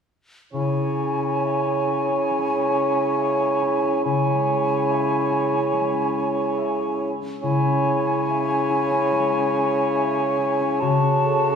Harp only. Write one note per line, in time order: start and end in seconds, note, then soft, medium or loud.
0.53 4.04 C#3 soft
0.76 2.08 C#4 soft
1.00 1.64 G#4 soft
1.22 2.95 C#5 soft
1.44 3.17 E5 soft
1.65 2.73 G#4 soft
1.87 3.61 E4 soft
2.09 2.51 C#4 soft
2.31 4.25 G#3 soft
2.75 3.38 G#4 soft
2.96 4.66 C#5 soft
3.18 4.87 E5 soft
3.39 4.46 G#4 soft
3.62 5.29 E4 soft
3.84 5.50 C#4 soft
4.05 7.42 C#3 soft
4.47 5.08 G#4 soft
4.67 6.35 C#5 soft
4.89 6.57 E5 soft
5.30 6.99 E4 soft
5.52 5.93 C#4 soft
5.73 9.10 G#3 soft
5.94 7.20 C#4 soft
6.15 6.78 G#4 soft
6.37 8.06 C#5 soft
6.58 8.27 E5 soft
6.79 7.84 G#4 soft
7.00 8.69 E4 soft
7.22 7.63 C#4 soft
7.43 10.80 C#3 soft
7.65 8.90 C#4 soft
7.86 8.48 G#4 soft
8.07 9.73 C#5 soft
8.29 9.94 E5 soft
8.49 9.52 G#4 soft
8.70 10.37 E4 soft
8.91 9.31 C#4 soft
9.12 10.85 G#3 soft
9.33 10.59 C#4 soft
9.74 11.44 C#5 soft
9.95 10.84 E5 soft
10.17 10.85 G#4 soft
10.38 10.84 E4 soft
10.61 11.01 C#4 soft
10.82 11.55 C#3 soft
11.03 11.55 C#4 soft
11.24 11.55 A4 soft
11.45 11.55 C#5 soft